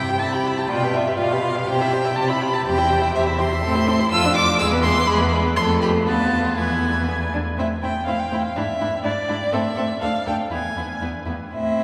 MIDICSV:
0, 0, Header, 1, 5, 480
1, 0, Start_track
1, 0, Tempo, 487805
1, 682, Time_signature, 2, 2, 24, 8
1, 5478, Tempo, 504626
1, 7398, Tempo, 492207
1, 11544, End_track
2, 0, Start_track
2, 0, Title_t, "Violin"
2, 0, Program_c, 0, 40
2, 0, Note_on_c, 0, 79, 93
2, 192, Note_on_c, 0, 81, 85
2, 207, Note_off_c, 0, 79, 0
2, 324, Note_on_c, 0, 83, 85
2, 339, Note_off_c, 0, 81, 0
2, 567, Note_on_c, 0, 81, 80
2, 582, Note_off_c, 0, 83, 0
2, 681, Note_on_c, 0, 79, 92
2, 695, Note_off_c, 0, 81, 0
2, 929, Note_on_c, 0, 76, 88
2, 944, Note_off_c, 0, 79, 0
2, 1161, Note_off_c, 0, 76, 0
2, 1167, Note_on_c, 0, 77, 96
2, 1648, Note_on_c, 0, 79, 98
2, 1663, Note_off_c, 0, 77, 0
2, 2126, Note_on_c, 0, 81, 92
2, 2140, Note_off_c, 0, 79, 0
2, 2249, Note_on_c, 0, 83, 94
2, 2264, Note_off_c, 0, 81, 0
2, 2497, Note_on_c, 0, 81, 83
2, 2512, Note_off_c, 0, 83, 0
2, 2611, Note_off_c, 0, 81, 0
2, 2624, Note_on_c, 0, 79, 101
2, 3087, Note_off_c, 0, 79, 0
2, 3102, Note_on_c, 0, 76, 93
2, 3181, Note_off_c, 0, 76, 0
2, 3342, Note_on_c, 0, 84, 114
2, 4036, Note_off_c, 0, 84, 0
2, 4053, Note_on_c, 0, 88, 125
2, 4283, Note_off_c, 0, 88, 0
2, 4292, Note_on_c, 0, 86, 120
2, 4513, Note_off_c, 0, 86, 0
2, 4519, Note_on_c, 0, 88, 127
2, 4598, Note_off_c, 0, 88, 0
2, 4752, Note_on_c, 0, 84, 127
2, 4990, Note_on_c, 0, 83, 113
2, 5005, Note_off_c, 0, 84, 0
2, 5234, Note_off_c, 0, 83, 0
2, 5477, Note_on_c, 0, 84, 123
2, 5553, Note_off_c, 0, 84, 0
2, 5718, Note_on_c, 0, 83, 95
2, 5794, Note_off_c, 0, 83, 0
2, 5960, Note_on_c, 0, 81, 98
2, 6424, Note_off_c, 0, 81, 0
2, 6430, Note_on_c, 0, 80, 84
2, 7144, Note_off_c, 0, 80, 0
2, 7406, Note_on_c, 0, 76, 76
2, 7484, Note_off_c, 0, 76, 0
2, 7639, Note_on_c, 0, 79, 82
2, 7860, Note_off_c, 0, 79, 0
2, 7866, Note_on_c, 0, 77, 76
2, 7995, Note_on_c, 0, 79, 77
2, 8010, Note_off_c, 0, 77, 0
2, 8228, Note_off_c, 0, 79, 0
2, 8234, Note_on_c, 0, 77, 73
2, 8348, Note_on_c, 0, 76, 90
2, 8363, Note_off_c, 0, 77, 0
2, 8823, Note_off_c, 0, 76, 0
2, 8827, Note_on_c, 0, 74, 86
2, 9300, Note_on_c, 0, 76, 95
2, 9315, Note_off_c, 0, 74, 0
2, 9769, Note_off_c, 0, 76, 0
2, 9775, Note_on_c, 0, 77, 80
2, 10013, Note_off_c, 0, 77, 0
2, 10022, Note_on_c, 0, 79, 79
2, 10100, Note_off_c, 0, 79, 0
2, 10260, Note_on_c, 0, 80, 78
2, 10739, Note_off_c, 0, 80, 0
2, 11247, Note_on_c, 0, 76, 77
2, 11544, Note_off_c, 0, 76, 0
2, 11544, End_track
3, 0, Start_track
3, 0, Title_t, "Violin"
3, 0, Program_c, 1, 40
3, 0, Note_on_c, 1, 76, 65
3, 84, Note_on_c, 1, 79, 53
3, 99, Note_off_c, 1, 76, 0
3, 195, Note_off_c, 1, 79, 0
3, 201, Note_on_c, 1, 76, 56
3, 322, Note_on_c, 1, 79, 52
3, 337, Note_off_c, 1, 76, 0
3, 446, Note_on_c, 1, 76, 59
3, 461, Note_off_c, 1, 79, 0
3, 568, Note_on_c, 1, 79, 55
3, 582, Note_off_c, 1, 76, 0
3, 680, Note_off_c, 1, 79, 0
3, 686, Note_on_c, 1, 74, 61
3, 819, Note_on_c, 1, 71, 53
3, 834, Note_off_c, 1, 74, 0
3, 939, Note_on_c, 1, 74, 60
3, 954, Note_off_c, 1, 71, 0
3, 1057, Note_on_c, 1, 71, 57
3, 1072, Note_off_c, 1, 74, 0
3, 1170, Note_off_c, 1, 71, 0
3, 1177, Note_on_c, 1, 74, 59
3, 1301, Note_on_c, 1, 71, 59
3, 1316, Note_off_c, 1, 74, 0
3, 1426, Note_on_c, 1, 74, 63
3, 1440, Note_off_c, 1, 71, 0
3, 1548, Note_on_c, 1, 71, 54
3, 1562, Note_off_c, 1, 74, 0
3, 1655, Note_off_c, 1, 71, 0
3, 1662, Note_on_c, 1, 72, 64
3, 1780, Note_on_c, 1, 76, 59
3, 1794, Note_off_c, 1, 72, 0
3, 1898, Note_on_c, 1, 72, 66
3, 1913, Note_off_c, 1, 76, 0
3, 2012, Note_on_c, 1, 76, 55
3, 2027, Note_off_c, 1, 72, 0
3, 2129, Note_off_c, 1, 76, 0
3, 2153, Note_on_c, 1, 72, 59
3, 2262, Note_on_c, 1, 76, 55
3, 2277, Note_off_c, 1, 72, 0
3, 2388, Note_on_c, 1, 72, 59
3, 2403, Note_off_c, 1, 76, 0
3, 2511, Note_on_c, 1, 76, 59
3, 2526, Note_off_c, 1, 72, 0
3, 2611, Note_off_c, 1, 76, 0
3, 2617, Note_on_c, 1, 72, 62
3, 2739, Note_on_c, 1, 76, 60
3, 2754, Note_off_c, 1, 72, 0
3, 2854, Note_on_c, 1, 72, 68
3, 2869, Note_off_c, 1, 76, 0
3, 2970, Note_on_c, 1, 76, 63
3, 2985, Note_off_c, 1, 72, 0
3, 3082, Note_off_c, 1, 76, 0
3, 3088, Note_on_c, 1, 72, 70
3, 3212, Note_on_c, 1, 76, 63
3, 3226, Note_off_c, 1, 72, 0
3, 3325, Note_on_c, 1, 72, 68
3, 3340, Note_off_c, 1, 76, 0
3, 3465, Note_on_c, 1, 76, 60
3, 3480, Note_off_c, 1, 72, 0
3, 3567, Note_off_c, 1, 76, 0
3, 3573, Note_on_c, 1, 69, 75
3, 3693, Note_on_c, 1, 72, 67
3, 3708, Note_off_c, 1, 69, 0
3, 3800, Note_on_c, 1, 69, 71
3, 3815, Note_off_c, 1, 72, 0
3, 3922, Note_on_c, 1, 72, 67
3, 3937, Note_off_c, 1, 69, 0
3, 4039, Note_off_c, 1, 72, 0
3, 4045, Note_on_c, 1, 69, 76
3, 4155, Note_on_c, 1, 65, 67
3, 4169, Note_off_c, 1, 69, 0
3, 4280, Note_on_c, 1, 69, 76
3, 4295, Note_off_c, 1, 65, 0
3, 4401, Note_on_c, 1, 65, 71
3, 4416, Note_off_c, 1, 69, 0
3, 4515, Note_off_c, 1, 65, 0
3, 4521, Note_on_c, 1, 68, 84
3, 4649, Note_on_c, 1, 71, 72
3, 4664, Note_off_c, 1, 68, 0
3, 4759, Note_on_c, 1, 68, 79
3, 4774, Note_off_c, 1, 71, 0
3, 4892, Note_on_c, 1, 71, 69
3, 4907, Note_off_c, 1, 68, 0
3, 4994, Note_off_c, 1, 71, 0
3, 5000, Note_on_c, 1, 68, 79
3, 5121, Note_on_c, 1, 71, 71
3, 5135, Note_off_c, 1, 68, 0
3, 5246, Note_on_c, 1, 68, 72
3, 5260, Note_off_c, 1, 71, 0
3, 5366, Note_on_c, 1, 71, 63
3, 5381, Note_off_c, 1, 68, 0
3, 5483, Note_off_c, 1, 71, 0
3, 5497, Note_on_c, 1, 69, 83
3, 5707, Note_off_c, 1, 69, 0
3, 5720, Note_on_c, 1, 67, 76
3, 5796, Note_off_c, 1, 67, 0
3, 5955, Note_on_c, 1, 65, 68
3, 6434, Note_on_c, 1, 64, 65
3, 6449, Note_off_c, 1, 65, 0
3, 7206, Note_off_c, 1, 64, 0
3, 7403, Note_on_c, 1, 64, 56
3, 7481, Note_off_c, 1, 64, 0
3, 7643, Note_on_c, 1, 64, 50
3, 7721, Note_off_c, 1, 64, 0
3, 7881, Note_on_c, 1, 64, 50
3, 7959, Note_off_c, 1, 64, 0
3, 8128, Note_on_c, 1, 64, 54
3, 8206, Note_off_c, 1, 64, 0
3, 8354, Note_on_c, 1, 64, 59
3, 8433, Note_off_c, 1, 64, 0
3, 8595, Note_on_c, 1, 64, 63
3, 8673, Note_off_c, 1, 64, 0
3, 8820, Note_on_c, 1, 64, 59
3, 8898, Note_off_c, 1, 64, 0
3, 9059, Note_on_c, 1, 64, 60
3, 9137, Note_off_c, 1, 64, 0
3, 9293, Note_on_c, 1, 69, 67
3, 9371, Note_off_c, 1, 69, 0
3, 9519, Note_on_c, 1, 69, 63
3, 9597, Note_off_c, 1, 69, 0
3, 9763, Note_on_c, 1, 69, 58
3, 9841, Note_off_c, 1, 69, 0
3, 10010, Note_on_c, 1, 69, 51
3, 10088, Note_off_c, 1, 69, 0
3, 10247, Note_on_c, 1, 64, 50
3, 10325, Note_off_c, 1, 64, 0
3, 10505, Note_on_c, 1, 64, 47
3, 10584, Note_off_c, 1, 64, 0
3, 10737, Note_on_c, 1, 64, 43
3, 10815, Note_off_c, 1, 64, 0
3, 10975, Note_on_c, 1, 64, 41
3, 11053, Note_off_c, 1, 64, 0
3, 11236, Note_on_c, 1, 64, 51
3, 11544, Note_off_c, 1, 64, 0
3, 11544, End_track
4, 0, Start_track
4, 0, Title_t, "Viola"
4, 0, Program_c, 2, 41
4, 0, Note_on_c, 2, 64, 60
4, 92, Note_on_c, 2, 67, 59
4, 107, Note_off_c, 2, 64, 0
4, 206, Note_off_c, 2, 67, 0
4, 214, Note_on_c, 2, 64, 59
4, 333, Note_on_c, 2, 67, 55
4, 348, Note_off_c, 2, 64, 0
4, 458, Note_on_c, 2, 64, 57
4, 473, Note_off_c, 2, 67, 0
4, 571, Note_on_c, 2, 67, 59
4, 585, Note_off_c, 2, 64, 0
4, 675, Note_off_c, 2, 67, 0
4, 681, Note_on_c, 2, 65, 72
4, 817, Note_on_c, 2, 67, 60
4, 832, Note_off_c, 2, 65, 0
4, 941, Note_on_c, 2, 65, 64
4, 955, Note_off_c, 2, 67, 0
4, 1056, Note_on_c, 2, 67, 60
4, 1071, Note_off_c, 2, 65, 0
4, 1166, Note_off_c, 2, 67, 0
4, 1172, Note_on_c, 2, 65, 64
4, 1298, Note_on_c, 2, 67, 59
4, 1313, Note_off_c, 2, 65, 0
4, 1406, Note_on_c, 2, 65, 56
4, 1420, Note_off_c, 2, 67, 0
4, 1533, Note_on_c, 2, 67, 59
4, 1548, Note_off_c, 2, 65, 0
4, 1648, Note_off_c, 2, 67, 0
4, 1660, Note_on_c, 2, 67, 70
4, 1776, Note_on_c, 2, 64, 64
4, 1791, Note_off_c, 2, 67, 0
4, 1889, Note_on_c, 2, 67, 61
4, 1904, Note_off_c, 2, 64, 0
4, 2014, Note_on_c, 2, 64, 59
4, 2029, Note_off_c, 2, 67, 0
4, 2120, Note_off_c, 2, 64, 0
4, 2126, Note_on_c, 2, 67, 64
4, 2257, Note_on_c, 2, 64, 58
4, 2272, Note_off_c, 2, 67, 0
4, 2376, Note_on_c, 2, 67, 57
4, 2391, Note_off_c, 2, 64, 0
4, 2496, Note_on_c, 2, 64, 59
4, 2511, Note_off_c, 2, 67, 0
4, 2595, Note_off_c, 2, 64, 0
4, 2601, Note_on_c, 2, 67, 68
4, 2734, Note_on_c, 2, 64, 66
4, 2749, Note_off_c, 2, 67, 0
4, 2853, Note_on_c, 2, 67, 68
4, 2868, Note_off_c, 2, 64, 0
4, 2965, Note_on_c, 2, 64, 68
4, 2980, Note_off_c, 2, 67, 0
4, 3083, Note_off_c, 2, 64, 0
4, 3089, Note_on_c, 2, 67, 68
4, 3215, Note_on_c, 2, 64, 64
4, 3229, Note_off_c, 2, 67, 0
4, 3338, Note_on_c, 2, 67, 63
4, 3352, Note_off_c, 2, 64, 0
4, 3459, Note_on_c, 2, 64, 60
4, 3474, Note_off_c, 2, 67, 0
4, 3574, Note_off_c, 2, 64, 0
4, 3593, Note_on_c, 2, 60, 80
4, 3696, Note_on_c, 2, 64, 72
4, 3710, Note_off_c, 2, 60, 0
4, 3814, Note_on_c, 2, 60, 70
4, 3829, Note_off_c, 2, 64, 0
4, 3930, Note_on_c, 2, 64, 73
4, 3945, Note_off_c, 2, 60, 0
4, 4047, Note_off_c, 2, 64, 0
4, 4060, Note_on_c, 2, 65, 79
4, 4183, Note_on_c, 2, 62, 72
4, 4197, Note_off_c, 2, 65, 0
4, 4303, Note_on_c, 2, 65, 70
4, 4318, Note_off_c, 2, 62, 0
4, 4415, Note_on_c, 2, 62, 68
4, 4430, Note_off_c, 2, 65, 0
4, 4528, Note_off_c, 2, 62, 0
4, 4537, Note_on_c, 2, 56, 83
4, 4646, Note_on_c, 2, 59, 74
4, 4661, Note_off_c, 2, 56, 0
4, 4769, Note_on_c, 2, 56, 73
4, 4784, Note_off_c, 2, 59, 0
4, 4888, Note_on_c, 2, 59, 77
4, 4903, Note_off_c, 2, 56, 0
4, 5001, Note_off_c, 2, 59, 0
4, 5007, Note_on_c, 2, 56, 76
4, 5123, Note_on_c, 2, 59, 72
4, 5137, Note_off_c, 2, 56, 0
4, 5242, Note_on_c, 2, 56, 70
4, 5257, Note_off_c, 2, 59, 0
4, 5363, Note_on_c, 2, 59, 68
4, 5378, Note_off_c, 2, 56, 0
4, 5481, Note_off_c, 2, 59, 0
4, 5493, Note_on_c, 2, 57, 85
4, 5950, Note_on_c, 2, 59, 74
4, 5964, Note_off_c, 2, 57, 0
4, 6421, Note_off_c, 2, 59, 0
4, 6427, Note_on_c, 2, 59, 67
4, 6857, Note_off_c, 2, 59, 0
4, 6917, Note_on_c, 2, 59, 59
4, 6993, Note_off_c, 2, 59, 0
4, 7159, Note_on_c, 2, 62, 63
4, 7235, Note_off_c, 2, 62, 0
4, 7393, Note_on_c, 2, 60, 61
4, 7471, Note_off_c, 2, 60, 0
4, 7632, Note_on_c, 2, 60, 46
4, 7710, Note_off_c, 2, 60, 0
4, 7867, Note_on_c, 2, 60, 51
4, 7945, Note_off_c, 2, 60, 0
4, 8112, Note_on_c, 2, 60, 48
4, 8190, Note_off_c, 2, 60, 0
4, 8348, Note_on_c, 2, 62, 64
4, 8426, Note_off_c, 2, 62, 0
4, 8582, Note_on_c, 2, 62, 55
4, 8660, Note_off_c, 2, 62, 0
4, 8815, Note_on_c, 2, 62, 65
4, 8893, Note_off_c, 2, 62, 0
4, 9052, Note_on_c, 2, 62, 60
4, 9130, Note_off_c, 2, 62, 0
4, 9292, Note_on_c, 2, 60, 70
4, 9370, Note_off_c, 2, 60, 0
4, 9533, Note_on_c, 2, 60, 55
4, 9611, Note_off_c, 2, 60, 0
4, 9787, Note_on_c, 2, 62, 59
4, 9865, Note_off_c, 2, 62, 0
4, 10030, Note_on_c, 2, 62, 49
4, 10108, Note_off_c, 2, 62, 0
4, 10280, Note_on_c, 2, 59, 53
4, 10358, Note_off_c, 2, 59, 0
4, 10527, Note_on_c, 2, 59, 44
4, 10605, Note_off_c, 2, 59, 0
4, 10762, Note_on_c, 2, 59, 44
4, 10840, Note_off_c, 2, 59, 0
4, 11005, Note_on_c, 2, 59, 42
4, 11083, Note_off_c, 2, 59, 0
4, 11249, Note_on_c, 2, 60, 54
4, 11544, Note_off_c, 2, 60, 0
4, 11544, End_track
5, 0, Start_track
5, 0, Title_t, "Cello"
5, 0, Program_c, 3, 42
5, 0, Note_on_c, 3, 48, 75
5, 139, Note_off_c, 3, 48, 0
5, 199, Note_on_c, 3, 48, 73
5, 625, Note_off_c, 3, 48, 0
5, 689, Note_on_c, 3, 47, 72
5, 1109, Note_off_c, 3, 47, 0
5, 1166, Note_on_c, 3, 47, 73
5, 1587, Note_off_c, 3, 47, 0
5, 1648, Note_on_c, 3, 48, 77
5, 2071, Note_off_c, 3, 48, 0
5, 2132, Note_on_c, 3, 48, 72
5, 2552, Note_off_c, 3, 48, 0
5, 2614, Note_on_c, 3, 40, 78
5, 3034, Note_off_c, 3, 40, 0
5, 3102, Note_on_c, 3, 40, 81
5, 3521, Note_off_c, 3, 40, 0
5, 3587, Note_on_c, 3, 45, 87
5, 3997, Note_off_c, 3, 45, 0
5, 4054, Note_on_c, 3, 41, 85
5, 4471, Note_off_c, 3, 41, 0
5, 4529, Note_on_c, 3, 40, 91
5, 4945, Note_off_c, 3, 40, 0
5, 4998, Note_on_c, 3, 40, 90
5, 5422, Note_off_c, 3, 40, 0
5, 5478, Note_on_c, 3, 41, 83
5, 5954, Note_on_c, 3, 38, 78
5, 5968, Note_off_c, 3, 41, 0
5, 6422, Note_off_c, 3, 38, 0
5, 6428, Note_on_c, 3, 40, 68
5, 7187, Note_off_c, 3, 40, 0
5, 7391, Note_on_c, 3, 45, 59
5, 7469, Note_off_c, 3, 45, 0
5, 7638, Note_on_c, 3, 45, 58
5, 7716, Note_off_c, 3, 45, 0
5, 7884, Note_on_c, 3, 45, 54
5, 7962, Note_off_c, 3, 45, 0
5, 8109, Note_on_c, 3, 45, 64
5, 8187, Note_off_c, 3, 45, 0
5, 8356, Note_on_c, 3, 44, 69
5, 8434, Note_off_c, 3, 44, 0
5, 8582, Note_on_c, 3, 44, 63
5, 8660, Note_off_c, 3, 44, 0
5, 8819, Note_on_c, 3, 44, 68
5, 8897, Note_off_c, 3, 44, 0
5, 9059, Note_on_c, 3, 44, 70
5, 9137, Note_off_c, 3, 44, 0
5, 9297, Note_on_c, 3, 45, 72
5, 9375, Note_off_c, 3, 45, 0
5, 9536, Note_on_c, 3, 45, 65
5, 9614, Note_off_c, 3, 45, 0
5, 9773, Note_on_c, 3, 38, 58
5, 9851, Note_off_c, 3, 38, 0
5, 10011, Note_on_c, 3, 38, 57
5, 10089, Note_off_c, 3, 38, 0
5, 10247, Note_on_c, 3, 40, 55
5, 10325, Note_off_c, 3, 40, 0
5, 10493, Note_on_c, 3, 40, 49
5, 10571, Note_off_c, 3, 40, 0
5, 10740, Note_on_c, 3, 40, 50
5, 10818, Note_off_c, 3, 40, 0
5, 10982, Note_on_c, 3, 40, 52
5, 11060, Note_off_c, 3, 40, 0
5, 11230, Note_on_c, 3, 45, 54
5, 11544, Note_off_c, 3, 45, 0
5, 11544, End_track
0, 0, End_of_file